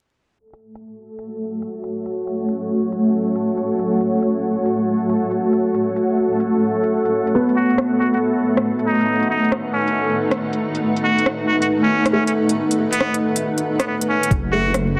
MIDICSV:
0, 0, Header, 1, 7, 480
1, 0, Start_track
1, 0, Tempo, 434783
1, 434, Time_signature, 4, 2, 24, 8
1, 16559, End_track
2, 0, Start_track
2, 0, Title_t, "Ambient pad"
2, 0, Program_c, 0, 92
2, 436, Note_on_c, 0, 57, 70
2, 759, Note_on_c, 0, 66, 69
2, 1037, Note_on_c, 0, 78, 81
2, 1056, Note_on_c, 0, 73, 69
2, 8405, Note_on_c, 0, 71, 64
2, 8449, Note_on_c, 0, 63, 81
2, 9554, Note_off_c, 0, 66, 0
2, 9933, Note_off_c, 0, 73, 0
2, 16559, Note_off_c, 0, 57, 0
2, 16559, Note_off_c, 0, 63, 0
2, 16559, Note_off_c, 0, 71, 0
2, 16559, Note_off_c, 0, 78, 0
2, 16559, End_track
3, 0, Start_track
3, 0, Title_t, "Muted trumpet"
3, 0, Program_c, 1, 59
3, 8350, Note_on_c, 1, 66, 89
3, 8608, Note_off_c, 1, 66, 0
3, 8824, Note_on_c, 1, 66, 80
3, 8927, Note_off_c, 1, 66, 0
3, 8982, Note_on_c, 1, 66, 64
3, 9040, Note_off_c, 1, 66, 0
3, 9791, Note_on_c, 1, 63, 81
3, 10255, Note_off_c, 1, 63, 0
3, 10269, Note_on_c, 1, 63, 86
3, 10527, Note_off_c, 1, 63, 0
3, 10748, Note_on_c, 1, 61, 85
3, 11231, Note_off_c, 1, 61, 0
3, 12189, Note_on_c, 1, 66, 89
3, 12447, Note_off_c, 1, 66, 0
3, 12668, Note_on_c, 1, 66, 80
3, 12769, Note_off_c, 1, 66, 0
3, 12824, Note_on_c, 1, 66, 71
3, 12881, Note_off_c, 1, 66, 0
3, 13058, Note_on_c, 1, 61, 82
3, 13311, Note_off_c, 1, 61, 0
3, 13386, Note_on_c, 1, 61, 85
3, 13488, Note_off_c, 1, 61, 0
3, 13538, Note_on_c, 1, 61, 75
3, 13598, Note_off_c, 1, 61, 0
3, 14269, Note_on_c, 1, 59, 90
3, 14517, Note_off_c, 1, 59, 0
3, 15226, Note_on_c, 1, 59, 82
3, 15283, Note_off_c, 1, 59, 0
3, 15313, Note_on_c, 1, 59, 74
3, 15412, Note_off_c, 1, 59, 0
3, 15554, Note_on_c, 1, 61, 86
3, 15794, Note_off_c, 1, 61, 0
3, 16032, Note_on_c, 1, 66, 90
3, 16289, Note_off_c, 1, 66, 0
3, 16514, Note_on_c, 1, 66, 81
3, 16559, Note_off_c, 1, 66, 0
3, 16559, End_track
4, 0, Start_track
4, 0, Title_t, "Synth texture"
4, 0, Program_c, 2, 99
4, 443, Note_on_c, 2, 69, 82
4, 447, Note_on_c, 2, 57, 78
4, 15811, Note_off_c, 2, 69, 0
4, 15813, Note_off_c, 2, 57, 0
4, 16559, End_track
5, 0, Start_track
5, 0, Title_t, "Felt piano"
5, 0, Program_c, 3, 0
5, 8113, Note_on_c, 3, 59, 69
5, 8301, Control_c, 3, 64, 127
5, 9864, Note_off_c, 3, 59, 0
5, 13391, Note_on_c, 3, 57, 73
5, 15143, Note_off_c, 3, 57, 0
5, 15810, Control_c, 3, 64, 0
5, 15992, Control_c, 3, 64, 127
5, 16037, Note_on_c, 3, 57, 49
5, 16559, Note_off_c, 3, 57, 0
5, 16559, End_track
6, 0, Start_track
6, 0, Title_t, "Detuned saw bass"
6, 0, Program_c, 4, 39
6, 15795, Note_on_c, 4, 30, 93
6, 16559, Note_off_c, 4, 30, 0
6, 16559, End_track
7, 0, Start_track
7, 0, Title_t, "Drums"
7, 590, Note_on_c, 9, 42, 40
7, 701, Note_off_c, 9, 42, 0
7, 832, Note_on_c, 9, 42, 50
7, 943, Note_off_c, 9, 42, 0
7, 1311, Note_on_c, 9, 42, 54
7, 1422, Note_off_c, 9, 42, 0
7, 1790, Note_on_c, 9, 42, 50
7, 1901, Note_off_c, 9, 42, 0
7, 2029, Note_on_c, 9, 42, 41
7, 2140, Note_off_c, 9, 42, 0
7, 2273, Note_on_c, 9, 42, 48
7, 2383, Note_off_c, 9, 42, 0
7, 2510, Note_on_c, 9, 42, 42
7, 2620, Note_off_c, 9, 42, 0
7, 2746, Note_on_c, 9, 42, 52
7, 2856, Note_off_c, 9, 42, 0
7, 3227, Note_on_c, 9, 42, 54
7, 3337, Note_off_c, 9, 42, 0
7, 3703, Note_on_c, 9, 42, 53
7, 3814, Note_off_c, 9, 42, 0
7, 3946, Note_on_c, 9, 42, 41
7, 4056, Note_off_c, 9, 42, 0
7, 4187, Note_on_c, 9, 42, 52
7, 4297, Note_off_c, 9, 42, 0
7, 4426, Note_on_c, 9, 42, 44
7, 4536, Note_off_c, 9, 42, 0
7, 4665, Note_on_c, 9, 42, 51
7, 4775, Note_off_c, 9, 42, 0
7, 5142, Note_on_c, 9, 42, 52
7, 5253, Note_off_c, 9, 42, 0
7, 5623, Note_on_c, 9, 42, 52
7, 5734, Note_off_c, 9, 42, 0
7, 5863, Note_on_c, 9, 42, 40
7, 5974, Note_off_c, 9, 42, 0
7, 6103, Note_on_c, 9, 42, 49
7, 6214, Note_off_c, 9, 42, 0
7, 6343, Note_on_c, 9, 42, 39
7, 6454, Note_off_c, 9, 42, 0
7, 6584, Note_on_c, 9, 42, 51
7, 6694, Note_off_c, 9, 42, 0
7, 7066, Note_on_c, 9, 42, 48
7, 7177, Note_off_c, 9, 42, 0
7, 7546, Note_on_c, 9, 42, 49
7, 7656, Note_off_c, 9, 42, 0
7, 7788, Note_on_c, 9, 42, 38
7, 7898, Note_off_c, 9, 42, 0
7, 8026, Note_on_c, 9, 42, 49
7, 8136, Note_off_c, 9, 42, 0
7, 8270, Note_on_c, 9, 42, 38
7, 8380, Note_off_c, 9, 42, 0
7, 8506, Note_on_c, 9, 42, 49
7, 8591, Note_on_c, 9, 37, 94
7, 8617, Note_off_c, 9, 42, 0
7, 8701, Note_off_c, 9, 37, 0
7, 8984, Note_on_c, 9, 42, 49
7, 9095, Note_off_c, 9, 42, 0
7, 9464, Note_on_c, 9, 37, 94
7, 9464, Note_on_c, 9, 42, 46
7, 9574, Note_off_c, 9, 37, 0
7, 9574, Note_off_c, 9, 42, 0
7, 9706, Note_on_c, 9, 42, 37
7, 9817, Note_off_c, 9, 42, 0
7, 9943, Note_on_c, 9, 42, 46
7, 10054, Note_off_c, 9, 42, 0
7, 10185, Note_on_c, 9, 42, 40
7, 10295, Note_off_c, 9, 42, 0
7, 10427, Note_on_c, 9, 42, 48
7, 10510, Note_on_c, 9, 37, 89
7, 10537, Note_off_c, 9, 42, 0
7, 10620, Note_off_c, 9, 37, 0
7, 10903, Note_on_c, 9, 42, 49
7, 11014, Note_off_c, 9, 42, 0
7, 11386, Note_on_c, 9, 37, 88
7, 11386, Note_on_c, 9, 42, 48
7, 11496, Note_off_c, 9, 37, 0
7, 11496, Note_off_c, 9, 42, 0
7, 11624, Note_on_c, 9, 42, 39
7, 11735, Note_off_c, 9, 42, 0
7, 11865, Note_on_c, 9, 42, 48
7, 11975, Note_off_c, 9, 42, 0
7, 12105, Note_on_c, 9, 42, 41
7, 12215, Note_off_c, 9, 42, 0
7, 12348, Note_on_c, 9, 42, 50
7, 12433, Note_on_c, 9, 37, 85
7, 12459, Note_off_c, 9, 42, 0
7, 12543, Note_off_c, 9, 37, 0
7, 12827, Note_on_c, 9, 42, 51
7, 12938, Note_off_c, 9, 42, 0
7, 13310, Note_on_c, 9, 37, 91
7, 13310, Note_on_c, 9, 42, 49
7, 13420, Note_off_c, 9, 37, 0
7, 13420, Note_off_c, 9, 42, 0
7, 13550, Note_on_c, 9, 42, 39
7, 13660, Note_off_c, 9, 42, 0
7, 13791, Note_on_c, 9, 42, 50
7, 13901, Note_off_c, 9, 42, 0
7, 14031, Note_on_c, 9, 42, 44
7, 14141, Note_off_c, 9, 42, 0
7, 14270, Note_on_c, 9, 42, 54
7, 14357, Note_on_c, 9, 37, 88
7, 14381, Note_off_c, 9, 42, 0
7, 14468, Note_off_c, 9, 37, 0
7, 14510, Note_on_c, 9, 42, 30
7, 14620, Note_off_c, 9, 42, 0
7, 14749, Note_on_c, 9, 42, 52
7, 14859, Note_off_c, 9, 42, 0
7, 14989, Note_on_c, 9, 42, 30
7, 15100, Note_off_c, 9, 42, 0
7, 15231, Note_on_c, 9, 37, 95
7, 15231, Note_on_c, 9, 42, 52
7, 15341, Note_off_c, 9, 37, 0
7, 15341, Note_off_c, 9, 42, 0
7, 15471, Note_on_c, 9, 42, 42
7, 15581, Note_off_c, 9, 42, 0
7, 15712, Note_on_c, 9, 42, 52
7, 15795, Note_on_c, 9, 36, 116
7, 15799, Note_off_c, 9, 42, 0
7, 15799, Note_on_c, 9, 42, 54
7, 15906, Note_off_c, 9, 36, 0
7, 15910, Note_off_c, 9, 42, 0
7, 16276, Note_on_c, 9, 37, 94
7, 16276, Note_on_c, 9, 42, 52
7, 16386, Note_off_c, 9, 37, 0
7, 16386, Note_off_c, 9, 42, 0
7, 16559, End_track
0, 0, End_of_file